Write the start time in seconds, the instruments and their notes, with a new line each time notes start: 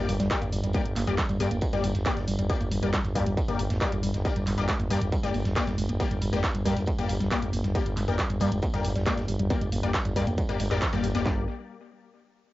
0.08 fm bass G1, synth arpeggio sound G3, open hi-hat, tambourine
0.20 fm bass G1, synth arpeggio sound G3, snare, closed hi-hat, mid tom
0.30 synth stab A#3 G4 D5, kick, snare, clap, closed hi-hat, tambourine
0.42 fm bass G1, synth arpeggio sound A#3, closed hi-hat, mid tom
0.52 fm bass G1, synth arpeggio sound G3, open hi-hat, tambourine
0.62 fm bass G1, synth arpeggio sound G3, snare, closed hi-hat, mid tom
0.73 synth arpeggio sound G3, synth stab A#3 G4 D5, kick, closed hi-hat, tambourine
0.85 fm bass G1, closed hi-hat, mid tom
0.96 fm bass G1, synth arpeggio sound A#3, clap, open hi-hat, tambourine
1.07 fm bass G1, synth arpeggio sound G3, synth stab A#3 G4 D5, closed hi-hat, mid tom
1.18 synth arpeggio sound G3, kick, snare, clap, closed hi-hat, tambourine
1.29 fm bass G1, synth arpeggio sound G3, closed hi-hat, mid tom
1.40 fm bass G2, synth stab A#3 G4 D5, open hi-hat, tambourine
1.51 fm bass G1, synth arpeggio sound A#3, closed hi-hat, mid tom
1.61 synth arpeggio sound G3, kick, closed hi-hat, tambourine
1.73 fm bass G1, synth arpeggio sound G3, synth stab A#3 G4 D5, snare, closed hi-hat, mid tom
1.84 fm bass G1, synth arpeggio sound G3, open hi-hat, tambourine
1.94 fm bass G1, snare, closed hi-hat, mid tom
2.06 synth arpeggio sound A#3, synth stab A#3 G4 D5, kick, snare, clap, closed hi-hat, tambourine
2.17 fm bass G1, synth arpeggio sound G3, snare, closed hi-hat, mid tom
2.27 fm bass G1, synth arpeggio sound G3, open hi-hat, tambourine
2.39 fm bass G1, synth arpeggio sound G3, closed hi-hat, mid tom
2.50 synth stab A#3 G4 D5, kick, closed hi-hat, tambourine
2.60 fm bass G1, synth arpeggio sound A#3, closed hi-hat, mid tom
2.71 fm bass G1, synth arpeggio sound G3, open hi-hat, tambourine
2.82 fm bass G1, synth arpeggio sound G3, synth stab A#3 G4 D5, closed hi-hat, mid tom
2.92 synth arpeggio sound G3, kick, snare, clap, closed hi-hat, tambourine
3.04 fm bass G1, closed hi-hat, mid tom
3.15 fm bass G2, synth arpeggio sound A#3, synth stab A#3 G4 D5, kick, snare, open hi-hat, tambourine
3.26 fm bass G1, synth arpeggio sound G3, closed hi-hat, mid tom
3.37 synth arpeggio sound G3, kick, closed hi-hat, tambourine
3.48 fm bass G1, synth arpeggio sound G3, synth stab A#3 G4 D5, closed hi-hat, mid tom
3.59 fm bass G1, open hi-hat, tambourine
3.70 fm bass G#1, synth arpeggio sound A#3, snare, closed hi-hat, mid tom
3.81 synth arpeggio sound G3, synth stab A#3 G4 D5, kick, snare, clap, closed hi-hat, tambourine
3.92 fm bass G1, synth arpeggio sound G3, closed hi-hat, mid tom
4.03 fm bass G1, synth arpeggio sound G3, open hi-hat, tambourine
4.14 fm bass G1, snare, closed hi-hat, mid tom
4.25 synth arpeggio sound A#3, synth stab A#3 G4 D5, kick, closed hi-hat, tambourine
4.36 fm bass G1, synth arpeggio sound G3, closed hi-hat, mid tom
4.46 fm bass G1, synth arpeggio sound G3, clap, open hi-hat, tambourine
4.58 fm bass G1, synth arpeggio sound G3, synth stab A#3 G4 D5, closed hi-hat, mid tom
4.68 synth arpeggio sound G#3, kick, snare, clap, closed hi-hat, tambourine
4.79 fm bass G1, synth arpeggio sound A#3, closed hi-hat, mid tom
4.90 fm bass G2, synth arpeggio sound G3, synth stab A#3 G4 D5, open hi-hat, tambourine
5.01 fm bass G1, synth arpeggio sound G3, closed hi-hat, mid tom
5.12 synth arpeggio sound G3, kick, closed hi-hat, tambourine
5.23 fm bass G1, synth arpeggio sound G#3, synth stab A#3 G4 D5, snare, closed hi-hat, mid tom
5.34 fm bass G1, synth arpeggio sound A#3, open hi-hat, tambourine
5.45 fm bass G1, synth arpeggio sound G3, snare, closed hi-hat, mid tom
5.56 synth stab A#3 G4 D5, kick, snare, clap, closed hi-hat, tambourine
5.67 fm bass G1, synth arpeggio sound G3, snare, closed hi-hat, mid tom
5.78 fm bass G1, synth arpeggio sound G#3, open hi-hat, tambourine
5.89 fm bass G1, synth arpeggio sound A#3, closed hi-hat, mid tom
6.00 synth arpeggio sound G3, synth stab A#3 G4 D5, kick, closed hi-hat, tambourine
6.11 fm bass G1, synth arpeggio sound G3, closed hi-hat, mid tom
6.21 fm bass G1, synth arpeggio sound G3, open hi-hat, tambourine
6.33 fm bass G1, synth arpeggio sound G#3, synth stab A#3 G4 D5, closed hi-hat, mid tom
6.44 kick, snare, clap, closed hi-hat, tambourine
6.55 fm bass G1, synth arpeggio sound G3, closed hi-hat, mid tom
6.65 fm bass G2, synth arpeggio sound G3, synth stab A#3 G4 D5, kick, snare, open hi-hat, tambourine
6.76 fm bass G1, synth arpeggio sound G3, closed hi-hat, mid tom
6.86 synth arpeggio sound G#3, kick, closed hi-hat, tambourine
6.98 fm bass G1, synth arpeggio sound A#3, synth stab A#3 G4 D5, closed hi-hat, mid tom
7.08 fm bass G1, synth arpeggio sound G3, open hi-hat, tambourine
7.20 fm bass G1, synth arpeggio sound G3, snare, closed hi-hat, mid tom
7.31 synth stab A#3 G4 D5, kick, snare, clap, closed hi-hat, tambourine
7.42 fm bass G1, synth arpeggio sound G#3, closed hi-hat, mid tom
7.53 fm bass G1, synth arpeggio sound A#3, open hi-hat, tambourine
7.64 fm bass G1, synth arpeggio sound G3, snare, closed hi-hat, mid tom
7.75 synth arpeggio sound G3, synth stab A#3 G4 D5, kick, closed hi-hat, tambourine
7.86 fm bass G1, synth arpeggio sound G3, closed hi-hat, mid tom
7.97 fm bass G1, synth arpeggio sound G#3, clap, open hi-hat, tambourine
8.08 fm bass G1, synth arpeggio sound A#3, synth stab A#3 G4 D5, closed hi-hat, mid tom
8.18 synth arpeggio sound G3, kick, snare, clap, closed hi-hat, tambourine
8.30 fm bass G1, synth arpeggio sound G3, closed hi-hat, mid tom
8.40 fm bass G2, synth arpeggio sound G3, synth stab A#3 G4 D5, open hi-hat, tambourine
8.52 fm bass G1, synth arpeggio sound G#3, closed hi-hat, mid tom
8.62 synth arpeggio sound A#3, kick, closed hi-hat, tambourine
8.74 fm bass G1, synth arpeggio sound G3, synth stab A#3 G4 D5, snare, closed hi-hat, mid tom
8.83 fm bass G1, synth arpeggio sound G3, open hi-hat, tambourine
8.95 fm bass G1, synth arpeggio sound G3, snare, closed hi-hat, mid tom
9.06 synth arpeggio sound G#3, synth stab A#3 G4 D5, kick, snare, clap, closed hi-hat, tambourine
9.17 fm bass G1, synth arpeggio sound A#3, snare, closed hi-hat, mid tom
9.28 fm bass G1, synth arpeggio sound G3, open hi-hat, tambourine
9.39 fm bass G1, synth arpeggio sound G3, closed hi-hat, mid tom
9.50 synth arpeggio sound G3, synth stab A#3 G4 D5, kick, closed hi-hat, tambourine
9.61 fm bass G1, synth arpeggio sound G#3, closed hi-hat, mid tom
9.72 fm bass G1, synth arpeggio sound A#3, open hi-hat, tambourine
9.83 fm bass G1, synth arpeggio sound G3, synth stab A#3 G4 D5, closed hi-hat, mid tom
9.94 synth arpeggio sound G3, kick, snare, clap, closed hi-hat, tambourine
10.05 fm bass G1, synth arpeggio sound G3, closed hi-hat, mid tom
10.16 fm bass G2, synth arpeggio sound G#3, synth stab A#3 G4 D5, kick, snare, open hi-hat, tambourine
10.27 fm bass G1, synth arpeggio sound A#3, closed hi-hat, mid tom
10.38 synth arpeggio sound G3, kick, closed hi-hat, tambourine
10.49 fm bass G1, synth arpeggio sound G3, synth stab A#3 G4 D5, closed hi-hat, mid tom
10.59 fm bass G1, synth arpeggio sound G#3, open hi-hat, tambourine
10.71 fm bass G#1, synth stab A#3 G4 D5, snare, clap, closed hi-hat, mid tom
10.82 synth arpeggio sound F3, kick, snare, clap, closed hi-hat, tambourine
10.93 fm bass G1, synth arpeggio sound G3, synth stab A#3 G4 D5, closed hi-hat, mid tom
11.03 fm bass G1, synth arpeggio sound G3, open hi-hat, tambourine
11.14 fm bass G1, synth arpeggio sound G#3, synth stab A#3 G4 D5, snare, closed hi-hat, mid tom
11.25 fm bass G1, synth arpeggio sound G3, synth stab A#3 G4 D5, kick, snare, clap